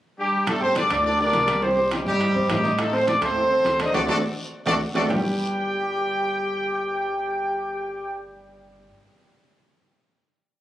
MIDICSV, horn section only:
0, 0, Header, 1, 2, 480
1, 0, Start_track
1, 0, Tempo, 288878
1, 783, Time_signature, 4, 2, 24, 8
1, 17623, End_track
2, 0, Start_track
2, 0, Title_t, "Horn section"
2, 0, Program_c, 0, 61
2, 323, Note_on_c, 0, 55, 69
2, 323, Note_on_c, 0, 67, 75
2, 328, Note_on_c, 0, 62, 55
2, 759, Note_off_c, 0, 55, 0
2, 759, Note_off_c, 0, 67, 0
2, 762, Note_off_c, 0, 62, 0
2, 815, Note_on_c, 0, 57, 69
2, 815, Note_on_c, 0, 69, 75
2, 826, Note_on_c, 0, 62, 67
2, 1023, Note_off_c, 0, 57, 0
2, 1023, Note_off_c, 0, 69, 0
2, 1029, Note_off_c, 0, 62, 0
2, 1042, Note_on_c, 0, 60, 79
2, 1042, Note_on_c, 0, 72, 85
2, 1044, Note_on_c, 0, 69, 62
2, 1256, Note_off_c, 0, 60, 0
2, 1256, Note_off_c, 0, 72, 0
2, 1257, Note_off_c, 0, 69, 0
2, 1285, Note_on_c, 0, 62, 77
2, 1285, Note_on_c, 0, 74, 83
2, 1286, Note_on_c, 0, 69, 59
2, 1719, Note_off_c, 0, 62, 0
2, 1719, Note_off_c, 0, 74, 0
2, 1720, Note_off_c, 0, 69, 0
2, 1762, Note_on_c, 0, 62, 77
2, 1762, Note_on_c, 0, 74, 84
2, 1764, Note_on_c, 0, 69, 70
2, 1975, Note_off_c, 0, 62, 0
2, 1975, Note_off_c, 0, 74, 0
2, 1976, Note_off_c, 0, 69, 0
2, 2008, Note_on_c, 0, 62, 79
2, 2008, Note_on_c, 0, 74, 86
2, 2019, Note_on_c, 0, 70, 73
2, 2663, Note_off_c, 0, 62, 0
2, 2663, Note_off_c, 0, 74, 0
2, 2669, Note_off_c, 0, 70, 0
2, 2715, Note_on_c, 0, 60, 79
2, 2715, Note_on_c, 0, 72, 86
2, 2723, Note_on_c, 0, 67, 69
2, 3186, Note_off_c, 0, 60, 0
2, 3186, Note_off_c, 0, 72, 0
2, 3190, Note_off_c, 0, 67, 0
2, 3218, Note_on_c, 0, 55, 66
2, 3218, Note_on_c, 0, 67, 71
2, 3220, Note_on_c, 0, 63, 53
2, 3422, Note_off_c, 0, 55, 0
2, 3422, Note_off_c, 0, 67, 0
2, 3423, Note_off_c, 0, 63, 0
2, 3457, Note_on_c, 0, 63, 68
2, 3458, Note_on_c, 0, 55, 79
2, 3458, Note_on_c, 0, 67, 86
2, 4108, Note_off_c, 0, 55, 0
2, 4108, Note_off_c, 0, 63, 0
2, 4108, Note_off_c, 0, 67, 0
2, 4166, Note_on_c, 0, 55, 73
2, 4166, Note_on_c, 0, 67, 80
2, 4167, Note_on_c, 0, 63, 67
2, 4599, Note_off_c, 0, 55, 0
2, 4599, Note_off_c, 0, 63, 0
2, 4599, Note_off_c, 0, 67, 0
2, 4646, Note_on_c, 0, 57, 72
2, 4646, Note_on_c, 0, 69, 78
2, 4652, Note_on_c, 0, 63, 71
2, 4871, Note_off_c, 0, 57, 0
2, 4871, Note_off_c, 0, 69, 0
2, 4875, Note_off_c, 0, 63, 0
2, 4892, Note_on_c, 0, 69, 73
2, 4895, Note_on_c, 0, 60, 82
2, 4895, Note_on_c, 0, 72, 89
2, 5105, Note_off_c, 0, 69, 0
2, 5116, Note_off_c, 0, 60, 0
2, 5116, Note_off_c, 0, 72, 0
2, 5124, Note_on_c, 0, 62, 75
2, 5124, Note_on_c, 0, 74, 81
2, 5125, Note_on_c, 0, 69, 69
2, 5335, Note_off_c, 0, 62, 0
2, 5335, Note_off_c, 0, 69, 0
2, 5335, Note_off_c, 0, 74, 0
2, 5374, Note_on_c, 0, 60, 84
2, 5374, Note_on_c, 0, 72, 92
2, 5386, Note_on_c, 0, 69, 69
2, 6316, Note_off_c, 0, 60, 0
2, 6316, Note_off_c, 0, 72, 0
2, 6322, Note_off_c, 0, 69, 0
2, 6331, Note_on_c, 0, 63, 78
2, 6331, Note_on_c, 0, 75, 85
2, 6336, Note_on_c, 0, 72, 78
2, 6555, Note_off_c, 0, 63, 0
2, 6555, Note_off_c, 0, 75, 0
2, 6557, Note_off_c, 0, 72, 0
2, 6564, Note_on_c, 0, 62, 80
2, 6564, Note_on_c, 0, 69, 86
2, 6564, Note_on_c, 0, 74, 87
2, 6565, Note_on_c, 0, 66, 85
2, 6672, Note_off_c, 0, 62, 0
2, 6672, Note_off_c, 0, 66, 0
2, 6672, Note_off_c, 0, 69, 0
2, 6672, Note_off_c, 0, 74, 0
2, 6793, Note_on_c, 0, 66, 90
2, 6795, Note_on_c, 0, 62, 85
2, 6795, Note_on_c, 0, 74, 92
2, 6803, Note_on_c, 0, 69, 98
2, 6904, Note_off_c, 0, 66, 0
2, 6905, Note_off_c, 0, 62, 0
2, 6905, Note_off_c, 0, 74, 0
2, 6911, Note_off_c, 0, 69, 0
2, 7758, Note_on_c, 0, 69, 88
2, 7766, Note_on_c, 0, 62, 90
2, 7766, Note_on_c, 0, 74, 98
2, 7767, Note_on_c, 0, 66, 100
2, 7868, Note_off_c, 0, 69, 0
2, 7874, Note_off_c, 0, 62, 0
2, 7874, Note_off_c, 0, 66, 0
2, 7874, Note_off_c, 0, 74, 0
2, 8240, Note_on_c, 0, 66, 86
2, 8243, Note_on_c, 0, 62, 80
2, 8243, Note_on_c, 0, 74, 86
2, 8244, Note_on_c, 0, 69, 89
2, 8350, Note_off_c, 0, 66, 0
2, 8352, Note_off_c, 0, 62, 0
2, 8352, Note_off_c, 0, 69, 0
2, 8352, Note_off_c, 0, 74, 0
2, 8464, Note_on_c, 0, 67, 71
2, 8464, Note_on_c, 0, 79, 77
2, 13572, Note_off_c, 0, 67, 0
2, 13572, Note_off_c, 0, 79, 0
2, 17623, End_track
0, 0, End_of_file